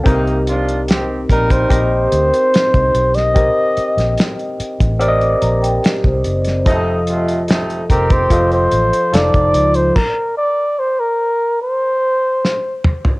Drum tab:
CC |----------------|----------------|----------------|x---------------|
HH |xxxxx-xxx-xxxxxx|x-xxxxxxxxxxx-xx|x-xxxxxxxxxxxxxx|----------------|
SD |----o-------o--o|---oo-------o--o|----o-------o---|------------o---|
T2 |----------------|----------------|----------------|--------------o-|
FT |----------------|----------------|----------------|---------------o|
BD |o-----ooo----o--|o------o-----o--|o-----ooo----o--|o---------------|